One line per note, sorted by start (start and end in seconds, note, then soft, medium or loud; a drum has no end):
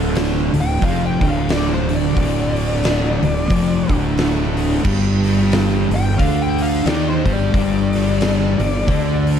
0.00 0.50 D1 medium
0.00 0.52 D2 medium
0.00 0.53 D3 loud
0.15 snare loud
0.15 open hi-hat medium
0.53 0.80 D1 medium
0.53 0.76 D2 medium
0.53 open hi-hat medium
0.61 0.82 G5 loud
0.82 1.18 F1 medium
0.82 1.20 F2 medium
0.82 1.21 F3 loud
0.82 1.05 F5 medium
0.82 kick loud
0.82 open hi-hat medium
1.06 1.27 G5 medium
1.21 2.12 D1 medium
1.21 2.15 D2 loud
1.21 2.16 D3 loud
1.21 kick loud
1.21 open hi-hat medium
1.29 1.49 F5 medium
1.49 1.72 D5 medium
1.49 snare loud
1.49 open hi-hat medium
1.74 1.95 C5 medium
1.89 open hi-hat medium
1.96 3.92 D5 medium
2.16 3.18 D1 medium
2.16 3.21 D2 medium
2.16 3.22 D3 loud
2.16 kick loud
2.16 open hi-hat medium
2.56 open hi-hat medium
2.84 snare loud
2.84 open hi-hat medium
3.22 3.48 D1 medium
3.22 3.45 D2 medium
3.22 open hi-hat medium
3.50 3.87 F1 loud
3.50 3.88 F2 loud
3.50 3.88 F3 loud
3.50 kick loud
3.50 open hi-hat medium
3.89 4.81 D1 medium
3.89 4.84 D2 medium
3.89 4.84 D3 loud
3.89 kick loud
3.89 open hi-hat medium
4.17 snare loud
4.17 open hi-hat medium
4.57 open hi-hat medium
4.84 5.87 G1 medium
4.84 5.89 G2 medium
4.84 5.90 G3 medium
4.84 kick loud
4.84 crash loud
5.24 snare soft
5.24 open hi-hat medium
5.52 snare loud
5.52 open hi-hat medium
5.90 6.17 G1 medium
5.90 6.13 G2 medium
5.90 open hi-hat medium
5.95 6.18 G5 loud
6.18 6.82 D2 medium
6.18 6.85 D3 medium
6.18 6.85 D4 loud
6.18 6.40 F5 loud
6.18 kick loud
6.18 open hi-hat medium
6.42 6.62 G5 loud
6.58 open hi-hat medium
6.63 6.85 F5 medium
6.85 7.22 D#2 medium
6.85 7.24 D#3 medium
6.85 7.24 D#4 loud
6.85 7.08 D5 medium
6.85 snare loud
6.85 open hi-hat medium
7.09 7.31 C5 medium
7.25 7.51 G1 medium
7.25 7.52 G2 medium
7.25 7.53 G3 medium
7.25 kick loud
7.25 open hi-hat medium
7.33 9.30 D5 loud
7.54 8.56 G1 medium
7.54 8.59 G2 loud
7.54 8.59 G3 loud
7.54 kick loud
7.54 open hi-hat medium
7.93 snare soft
7.93 open hi-hat medium
8.21 snare loud
8.21 open hi-hat medium
8.59 8.86 G1 medium
8.59 8.82 G2 medium
8.59 open hi-hat medium
8.88 9.40 D2 medium
8.88 9.40 D3 loud
8.88 9.40 D4 loud
8.88 kick loud
8.88 open hi-hat medium
9.27 open hi-hat medium